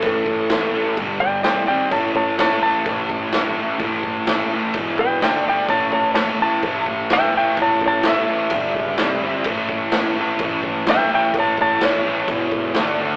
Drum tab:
CC |x-x-x-x-|x-x-x-x-|x-x-x-x-|x-x-x-x-|
SD |--o---o-|--o---o-|--o---o-|--o---o-|
BD |oo--oo--|oo--oo--|oo--oo--|oo--oo--|

CC |x-x-x-x-|x-x-x-x-|x-x-x-x-|
SD |--o---o-|--o---o-|--o---o-|
BD |oo--oo--|oo--oo--|oo--oo--|